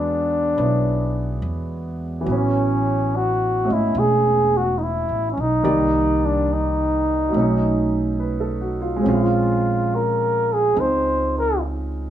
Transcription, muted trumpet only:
Already playing: D4
2.33 C#4
3.16 F#4
3.73 E4
3.99 G#4
4.57 F#4
4.78 D#4
4.83 E4
5.32 C#4
5.40 D#4
6.25 D4
6.53 D#4
9.13 F4
9.95 A#4
10.53 G#4
10.80 C5
11.39 A#4

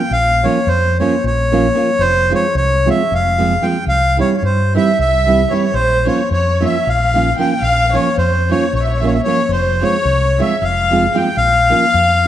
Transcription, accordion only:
Already playing: G5
0.12 F5
0.44 C#5
0.68 C5
1.00 C#5
1.26 C#5
2.01 C5
2.34 C#5
2.57 C#5
2.90 E5
3.14 F5
3.63 G5
3.88 F5
4.21 C#5
4.37 C#5
4.45 C5
4.77 E5
5.00 E5
5.51 C#5
5.74 C5
6.07 C#5
6.33 C#5
6.65 E5
6.89 F5
7.40 G5
7.63 F5
7.94 C#5
8.18 C5
8.51 C#5
8.75 C#5
8.84 E5
8.93 C#5
9.01 E5
9.07 C#5
9.14 E5
9.24 C#5
9.53 C5
9.83 C#5
10.40 E5
10.64 F5
11.16 G5
11.37 F5

